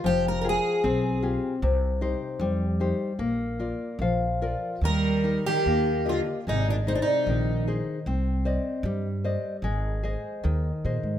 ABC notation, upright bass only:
X:1
M:2/4
L:1/16
Q:1/4=75
K:Ablyd
V:1 name="Upright bass" clef=bass
F,,,4 _C,,4 | C,,4 F,,4 | B,,,4 B,,,4 | E,,4 E,,4 |
A,,,4 B,,,4 | C,,4 G,,4 | A,,,4 E,,2 B,, A,, |]